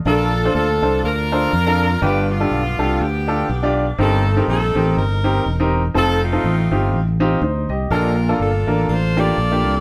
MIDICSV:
0, 0, Header, 1, 4, 480
1, 0, Start_track
1, 0, Key_signature, -2, "major"
1, 0, Tempo, 490597
1, 58, Time_signature, 4, 2, 24, 8
1, 9591, End_track
2, 0, Start_track
2, 0, Title_t, "Grand piano"
2, 0, Program_c, 0, 0
2, 58, Note_on_c, 0, 62, 73
2, 62, Note_on_c, 0, 46, 59
2, 63, Note_on_c, 0, 65, 66
2, 65, Note_on_c, 0, 69, 64
2, 66, Note_on_c, 0, 70, 79
2, 286, Note_off_c, 0, 62, 0
2, 288, Note_off_c, 0, 65, 0
2, 289, Note_off_c, 0, 69, 0
2, 290, Note_off_c, 0, 70, 0
2, 438, Note_on_c, 0, 62, 67
2, 443, Note_on_c, 0, 65, 63
2, 443, Note_on_c, 0, 69, 62
2, 445, Note_on_c, 0, 72, 75
2, 635, Note_off_c, 0, 62, 0
2, 637, Note_off_c, 0, 65, 0
2, 637, Note_off_c, 0, 69, 0
2, 638, Note_off_c, 0, 72, 0
2, 770, Note_off_c, 0, 46, 0
2, 806, Note_on_c, 0, 62, 62
2, 810, Note_on_c, 0, 65, 55
2, 810, Note_on_c, 0, 69, 58
2, 814, Note_on_c, 0, 72, 66
2, 1053, Note_off_c, 0, 62, 0
2, 1055, Note_off_c, 0, 65, 0
2, 1055, Note_off_c, 0, 69, 0
2, 1057, Note_off_c, 0, 72, 0
2, 1292, Note_on_c, 0, 62, 75
2, 1294, Note_on_c, 0, 65, 60
2, 1296, Note_on_c, 0, 69, 67
2, 1296, Note_on_c, 0, 72, 76
2, 1469, Note_off_c, 0, 62, 0
2, 1470, Note_off_c, 0, 65, 0
2, 1471, Note_off_c, 0, 69, 0
2, 1471, Note_off_c, 0, 72, 0
2, 1629, Note_on_c, 0, 62, 71
2, 1632, Note_on_c, 0, 65, 62
2, 1634, Note_on_c, 0, 69, 72
2, 1635, Note_on_c, 0, 70, 88
2, 1839, Note_off_c, 0, 62, 0
2, 1841, Note_off_c, 0, 65, 0
2, 1842, Note_off_c, 0, 69, 0
2, 1842, Note_off_c, 0, 70, 0
2, 1972, Note_on_c, 0, 62, 70
2, 1973, Note_on_c, 0, 65, 69
2, 1977, Note_on_c, 0, 43, 63
2, 1977, Note_on_c, 0, 67, 62
2, 1978, Note_on_c, 0, 71, 79
2, 2204, Note_off_c, 0, 62, 0
2, 2204, Note_off_c, 0, 65, 0
2, 2206, Note_off_c, 0, 67, 0
2, 2207, Note_off_c, 0, 71, 0
2, 2351, Note_on_c, 0, 65, 58
2, 2352, Note_on_c, 0, 62, 70
2, 2354, Note_on_c, 0, 67, 58
2, 2355, Note_on_c, 0, 69, 70
2, 2552, Note_off_c, 0, 62, 0
2, 2552, Note_off_c, 0, 65, 0
2, 2553, Note_off_c, 0, 67, 0
2, 2554, Note_off_c, 0, 69, 0
2, 2688, Note_off_c, 0, 43, 0
2, 2727, Note_on_c, 0, 62, 58
2, 2729, Note_on_c, 0, 65, 60
2, 2729, Note_on_c, 0, 67, 64
2, 2731, Note_on_c, 0, 69, 77
2, 2974, Note_off_c, 0, 62, 0
2, 2975, Note_off_c, 0, 65, 0
2, 2975, Note_off_c, 0, 67, 0
2, 2976, Note_off_c, 0, 69, 0
2, 3206, Note_on_c, 0, 62, 67
2, 3208, Note_on_c, 0, 67, 67
2, 3209, Note_on_c, 0, 65, 65
2, 3211, Note_on_c, 0, 69, 79
2, 3387, Note_off_c, 0, 62, 0
2, 3388, Note_off_c, 0, 65, 0
2, 3388, Note_off_c, 0, 67, 0
2, 3389, Note_off_c, 0, 69, 0
2, 3549, Note_on_c, 0, 62, 76
2, 3553, Note_on_c, 0, 65, 68
2, 3554, Note_on_c, 0, 67, 67
2, 3557, Note_on_c, 0, 74, 87
2, 3760, Note_off_c, 0, 62, 0
2, 3761, Note_off_c, 0, 65, 0
2, 3762, Note_off_c, 0, 67, 0
2, 3764, Note_off_c, 0, 74, 0
2, 3899, Note_on_c, 0, 60, 75
2, 3902, Note_on_c, 0, 43, 62
2, 3902, Note_on_c, 0, 67, 67
2, 3903, Note_on_c, 0, 63, 62
2, 3904, Note_on_c, 0, 70, 75
2, 4127, Note_off_c, 0, 60, 0
2, 4129, Note_off_c, 0, 63, 0
2, 4129, Note_off_c, 0, 67, 0
2, 4130, Note_off_c, 0, 70, 0
2, 4269, Note_on_c, 0, 63, 62
2, 4270, Note_on_c, 0, 60, 68
2, 4271, Note_on_c, 0, 67, 64
2, 4274, Note_on_c, 0, 70, 75
2, 4471, Note_off_c, 0, 60, 0
2, 4471, Note_off_c, 0, 63, 0
2, 4472, Note_off_c, 0, 67, 0
2, 4473, Note_off_c, 0, 70, 0
2, 4610, Note_off_c, 0, 43, 0
2, 4650, Note_on_c, 0, 60, 64
2, 4654, Note_on_c, 0, 67, 60
2, 4655, Note_on_c, 0, 63, 61
2, 4655, Note_on_c, 0, 70, 70
2, 4896, Note_off_c, 0, 60, 0
2, 4897, Note_off_c, 0, 67, 0
2, 4898, Note_off_c, 0, 63, 0
2, 4898, Note_off_c, 0, 70, 0
2, 5129, Note_on_c, 0, 60, 72
2, 5129, Note_on_c, 0, 63, 62
2, 5130, Note_on_c, 0, 67, 71
2, 5132, Note_on_c, 0, 70, 75
2, 5308, Note_off_c, 0, 60, 0
2, 5308, Note_off_c, 0, 63, 0
2, 5308, Note_off_c, 0, 67, 0
2, 5310, Note_off_c, 0, 70, 0
2, 5477, Note_on_c, 0, 60, 68
2, 5478, Note_on_c, 0, 63, 76
2, 5480, Note_on_c, 0, 67, 68
2, 5482, Note_on_c, 0, 70, 85
2, 5683, Note_off_c, 0, 60, 0
2, 5684, Note_off_c, 0, 63, 0
2, 5685, Note_off_c, 0, 67, 0
2, 5686, Note_off_c, 0, 70, 0
2, 5816, Note_on_c, 0, 60, 75
2, 5816, Note_on_c, 0, 63, 66
2, 5819, Note_on_c, 0, 65, 64
2, 5823, Note_on_c, 0, 69, 78
2, 6045, Note_off_c, 0, 60, 0
2, 6045, Note_off_c, 0, 63, 0
2, 6047, Note_off_c, 0, 65, 0
2, 6049, Note_off_c, 0, 69, 0
2, 6187, Note_on_c, 0, 60, 64
2, 6191, Note_on_c, 0, 65, 66
2, 6192, Note_on_c, 0, 63, 65
2, 6194, Note_on_c, 0, 69, 71
2, 6389, Note_off_c, 0, 60, 0
2, 6391, Note_off_c, 0, 65, 0
2, 6392, Note_off_c, 0, 63, 0
2, 6393, Note_off_c, 0, 69, 0
2, 6568, Note_on_c, 0, 60, 62
2, 6571, Note_on_c, 0, 63, 61
2, 6573, Note_on_c, 0, 67, 67
2, 6575, Note_on_c, 0, 65, 59
2, 6814, Note_off_c, 0, 60, 0
2, 6816, Note_off_c, 0, 63, 0
2, 6817, Note_off_c, 0, 67, 0
2, 6818, Note_off_c, 0, 65, 0
2, 7046, Note_on_c, 0, 60, 84
2, 7047, Note_on_c, 0, 63, 82
2, 7047, Note_on_c, 0, 65, 79
2, 7050, Note_on_c, 0, 67, 88
2, 7226, Note_off_c, 0, 60, 0
2, 7226, Note_off_c, 0, 65, 0
2, 7227, Note_off_c, 0, 63, 0
2, 7228, Note_off_c, 0, 67, 0
2, 7263, Note_on_c, 0, 72, 58
2, 7269, Note_on_c, 0, 63, 50
2, 7516, Note_off_c, 0, 72, 0
2, 7519, Note_off_c, 0, 63, 0
2, 7529, Note_on_c, 0, 75, 54
2, 7534, Note_on_c, 0, 67, 50
2, 7740, Note_on_c, 0, 58, 74
2, 7741, Note_on_c, 0, 46, 58
2, 7742, Note_on_c, 0, 62, 62
2, 7744, Note_on_c, 0, 65, 70
2, 7745, Note_on_c, 0, 69, 79
2, 7967, Note_off_c, 0, 58, 0
2, 7968, Note_off_c, 0, 62, 0
2, 7968, Note_off_c, 0, 65, 0
2, 7969, Note_off_c, 0, 69, 0
2, 7984, Note_off_c, 0, 75, 0
2, 7986, Note_off_c, 0, 67, 0
2, 8109, Note_on_c, 0, 58, 66
2, 8110, Note_on_c, 0, 62, 61
2, 8111, Note_on_c, 0, 65, 62
2, 8112, Note_on_c, 0, 69, 77
2, 8310, Note_off_c, 0, 58, 0
2, 8310, Note_off_c, 0, 62, 0
2, 8311, Note_off_c, 0, 65, 0
2, 8311, Note_off_c, 0, 69, 0
2, 8449, Note_off_c, 0, 46, 0
2, 8484, Note_on_c, 0, 58, 65
2, 8489, Note_on_c, 0, 62, 58
2, 8491, Note_on_c, 0, 65, 57
2, 8491, Note_on_c, 0, 70, 71
2, 8732, Note_off_c, 0, 58, 0
2, 8734, Note_off_c, 0, 62, 0
2, 8735, Note_off_c, 0, 65, 0
2, 8735, Note_off_c, 0, 70, 0
2, 8968, Note_on_c, 0, 58, 74
2, 8969, Note_on_c, 0, 62, 64
2, 8974, Note_on_c, 0, 65, 66
2, 8974, Note_on_c, 0, 67, 74
2, 9147, Note_off_c, 0, 58, 0
2, 9147, Note_off_c, 0, 62, 0
2, 9149, Note_off_c, 0, 65, 0
2, 9149, Note_off_c, 0, 67, 0
2, 9309, Note_on_c, 0, 58, 62
2, 9311, Note_on_c, 0, 62, 55
2, 9313, Note_on_c, 0, 65, 57
2, 9315, Note_on_c, 0, 67, 69
2, 9518, Note_off_c, 0, 58, 0
2, 9519, Note_off_c, 0, 62, 0
2, 9520, Note_off_c, 0, 65, 0
2, 9521, Note_off_c, 0, 67, 0
2, 9591, End_track
3, 0, Start_track
3, 0, Title_t, "Saxophone section"
3, 0, Program_c, 1, 65
3, 62, Note_on_c, 1, 65, 73
3, 64, Note_on_c, 1, 69, 95
3, 69, Note_on_c, 1, 62, 73
3, 508, Note_off_c, 1, 69, 0
3, 531, Note_off_c, 1, 65, 0
3, 532, Note_off_c, 1, 62, 0
3, 543, Note_on_c, 1, 65, 74
3, 543, Note_on_c, 1, 69, 93
3, 544, Note_on_c, 1, 62, 66
3, 988, Note_off_c, 1, 69, 0
3, 1013, Note_off_c, 1, 65, 0
3, 1018, Note_off_c, 1, 62, 0
3, 1025, Note_on_c, 1, 65, 82
3, 1026, Note_on_c, 1, 70, 116
3, 1030, Note_on_c, 1, 62, 81
3, 1943, Note_off_c, 1, 65, 0
3, 1946, Note_off_c, 1, 62, 0
3, 1981, Note_on_c, 1, 59, 64
3, 1981, Note_on_c, 1, 67, 98
3, 1983, Note_off_c, 1, 70, 0
3, 1983, Note_on_c, 1, 62, 65
3, 2230, Note_off_c, 1, 67, 0
3, 2241, Note_off_c, 1, 62, 0
3, 2242, Note_off_c, 1, 59, 0
3, 2250, Note_on_c, 1, 65, 98
3, 2253, Note_on_c, 1, 62, 61
3, 2254, Note_on_c, 1, 59, 67
3, 2935, Note_off_c, 1, 62, 0
3, 2937, Note_off_c, 1, 59, 0
3, 2941, Note_off_c, 1, 65, 0
3, 2942, Note_on_c, 1, 67, 87
3, 2946, Note_on_c, 1, 62, 59
3, 2949, Note_on_c, 1, 59, 66
3, 3690, Note_off_c, 1, 67, 0
3, 3864, Note_off_c, 1, 62, 0
3, 3865, Note_off_c, 1, 59, 0
3, 3908, Note_on_c, 1, 69, 94
3, 3914, Note_on_c, 1, 60, 67
3, 3917, Note_on_c, 1, 63, 74
3, 4351, Note_off_c, 1, 69, 0
3, 4373, Note_off_c, 1, 60, 0
3, 4373, Note_off_c, 1, 63, 0
3, 4384, Note_on_c, 1, 69, 95
3, 4385, Note_on_c, 1, 60, 67
3, 4385, Note_on_c, 1, 63, 73
3, 4829, Note_off_c, 1, 69, 0
3, 4856, Note_off_c, 1, 63, 0
3, 4867, Note_on_c, 1, 63, 71
3, 4867, Note_on_c, 1, 70, 90
3, 5303, Note_off_c, 1, 60, 0
3, 5612, Note_off_c, 1, 70, 0
3, 5784, Note_off_c, 1, 63, 0
3, 5828, Note_on_c, 1, 69, 117
3, 5832, Note_on_c, 1, 60, 76
3, 5834, Note_on_c, 1, 63, 85
3, 6074, Note_off_c, 1, 69, 0
3, 6085, Note_off_c, 1, 60, 0
3, 6092, Note_on_c, 1, 65, 96
3, 6097, Note_on_c, 1, 57, 76
3, 6097, Note_on_c, 1, 60, 75
3, 6747, Note_off_c, 1, 63, 0
3, 7011, Note_off_c, 1, 65, 0
3, 7013, Note_off_c, 1, 57, 0
3, 7013, Note_off_c, 1, 60, 0
3, 7746, Note_on_c, 1, 62, 67
3, 7746, Note_on_c, 1, 65, 65
3, 7747, Note_on_c, 1, 70, 82
3, 8189, Note_off_c, 1, 70, 0
3, 8214, Note_off_c, 1, 62, 0
3, 8214, Note_off_c, 1, 65, 0
3, 8226, Note_on_c, 1, 62, 70
3, 8226, Note_on_c, 1, 65, 60
3, 8230, Note_on_c, 1, 69, 81
3, 8691, Note_off_c, 1, 65, 0
3, 8692, Note_off_c, 1, 69, 0
3, 8703, Note_on_c, 1, 65, 68
3, 8704, Note_on_c, 1, 69, 67
3, 8709, Note_on_c, 1, 72, 96
3, 8959, Note_off_c, 1, 65, 0
3, 8959, Note_off_c, 1, 69, 0
3, 8971, Note_on_c, 1, 65, 83
3, 8971, Note_on_c, 1, 69, 82
3, 8972, Note_off_c, 1, 72, 0
3, 8976, Note_on_c, 1, 74, 115
3, 9142, Note_off_c, 1, 62, 0
3, 9591, Note_off_c, 1, 65, 0
3, 9591, Note_off_c, 1, 69, 0
3, 9591, Note_off_c, 1, 74, 0
3, 9591, End_track
4, 0, Start_track
4, 0, Title_t, "Fingered electric bass"
4, 0, Program_c, 2, 33
4, 53, Note_on_c, 2, 34, 95
4, 463, Note_off_c, 2, 34, 0
4, 536, Note_on_c, 2, 38, 84
4, 766, Note_off_c, 2, 38, 0
4, 804, Note_on_c, 2, 36, 73
4, 986, Note_off_c, 2, 36, 0
4, 1017, Note_on_c, 2, 38, 72
4, 1427, Note_off_c, 2, 38, 0
4, 1497, Note_on_c, 2, 41, 87
4, 1907, Note_off_c, 2, 41, 0
4, 1976, Note_on_c, 2, 31, 105
4, 2386, Note_off_c, 2, 31, 0
4, 2459, Note_on_c, 2, 35, 75
4, 2688, Note_off_c, 2, 35, 0
4, 2727, Note_on_c, 2, 36, 71
4, 2908, Note_off_c, 2, 36, 0
4, 2938, Note_on_c, 2, 38, 75
4, 3347, Note_off_c, 2, 38, 0
4, 3418, Note_on_c, 2, 35, 89
4, 3827, Note_off_c, 2, 35, 0
4, 3898, Note_on_c, 2, 31, 93
4, 4307, Note_off_c, 2, 31, 0
4, 4384, Note_on_c, 2, 34, 80
4, 4611, Note_off_c, 2, 34, 0
4, 4650, Note_on_c, 2, 33, 75
4, 4829, Note_off_c, 2, 33, 0
4, 4862, Note_on_c, 2, 31, 80
4, 5269, Note_off_c, 2, 31, 0
4, 5342, Note_on_c, 2, 28, 85
4, 5749, Note_off_c, 2, 28, 0
4, 5822, Note_on_c, 2, 29, 92
4, 6229, Note_off_c, 2, 29, 0
4, 6301, Note_on_c, 2, 33, 74
4, 6528, Note_off_c, 2, 33, 0
4, 6568, Note_on_c, 2, 31, 79
4, 6747, Note_off_c, 2, 31, 0
4, 6776, Note_on_c, 2, 33, 70
4, 7185, Note_off_c, 2, 33, 0
4, 7255, Note_on_c, 2, 38, 87
4, 7485, Note_off_c, 2, 38, 0
4, 7524, Note_on_c, 2, 36, 73
4, 7705, Note_off_c, 2, 36, 0
4, 7734, Note_on_c, 2, 34, 103
4, 8144, Note_off_c, 2, 34, 0
4, 8214, Note_on_c, 2, 31, 74
4, 8444, Note_off_c, 2, 31, 0
4, 8482, Note_on_c, 2, 33, 66
4, 8664, Note_off_c, 2, 33, 0
4, 8696, Note_on_c, 2, 33, 70
4, 9105, Note_off_c, 2, 33, 0
4, 9176, Note_on_c, 2, 34, 84
4, 9443, Note_off_c, 2, 34, 0
4, 9443, Note_on_c, 2, 36, 83
4, 9591, Note_off_c, 2, 36, 0
4, 9591, End_track
0, 0, End_of_file